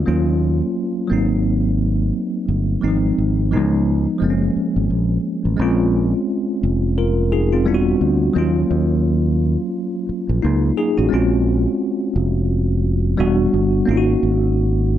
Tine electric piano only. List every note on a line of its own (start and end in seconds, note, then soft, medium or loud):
0.06 1.06 F#3 medium
0.06 1.08 A#3 medium
0.06 1.11 C#4 medium
0.06 1.11 F4 medium
1.07 2.78 F#3 medium
1.07 2.79 A#3 medium
1.07 2.80 C4 medium
1.13 2.81 D#4 medium
2.81 2.90 E3 medium
2.81 3.51 G#3 medium
2.81 3.52 C4 medium
2.81 3.52 D#4 medium
2.88 3.54 F3 medium
3.51 3.59 E3 medium
3.51 4.19 G#3 medium
3.51 4.21 B3 medium
3.51 4.22 D#4 medium
3.57 4.17 F3 medium
4.18 5.55 F3 medium
4.18 5.56 G#3 medium
4.18 5.57 A#3 medium
4.24 4.30 C4 medium
4.30 5.59 C#4 medium
5.57 7.61 G#3 medium
5.57 6.94 C4 medium
5.57 6.95 C#4 medium
5.62 6.96 F4 medium
6.98 7.31 F4 medium
6.98 7.30 A#4 medium
7.32 7.51 D#4 medium
7.32 7.51 G#4 medium
7.52 7.85 C4 medium
7.52 7.85 F4 medium
7.66 8.35 G3 medium
7.66 8.35 B3 medium
7.66 8.36 D4 medium
7.66 7.75 E4 medium
7.74 8.39 F#4 medium
8.34 11.07 F#3 medium
8.34 10.39 A#3 medium
8.34 10.39 C#4 medium
8.38 10.40 F4 medium
10.42 10.76 A#3 medium
10.42 10.75 D#4 medium
10.77 10.97 D#4 medium
10.77 10.96 G#4 medium
10.98 11.11 C#4 medium
10.98 11.30 F#4 medium
11.09 13.13 G#3 medium
11.09 13.14 C4 medium
11.09 13.15 C#4 medium
11.14 13.16 F4 medium
13.17 13.87 G3 medium
13.17 13.87 B3 medium
13.17 13.88 D4 medium
13.17 13.89 F#4 medium
13.86 14.98 A#3 medium
13.86 14.98 C#4 medium
13.86 14.98 D#4 medium
13.91 13.97 F4 medium
13.97 14.98 F#4 medium